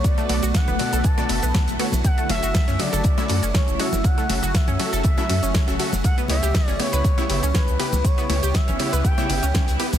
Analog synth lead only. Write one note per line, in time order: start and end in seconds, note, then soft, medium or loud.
0.04 0.54 D5 loud
0.54 1.06 F#5 loud
1.05 1.80 A5 loud
2.05 2.28 F#5 loud
2.30 2.81 E5 loud
2.80 3.56 D5 loud
3.55 3.81 C#5 medium
3.80 4.06 E5 loud
4.05 4.56 F#5 loud
4.55 5.04 E5 loud
5.05 5.76 E5 loud
6.04 6.16 F#5 loud
6.29 6.66 E5 loud
6.66 6.81 D5 loud
6.80 7.56 C#5 loud
7.55 8.06 B4 loud
8.05 8.56 C#5 loud
8.54 9.04 E5 loud
9.05 9.76 G5 loud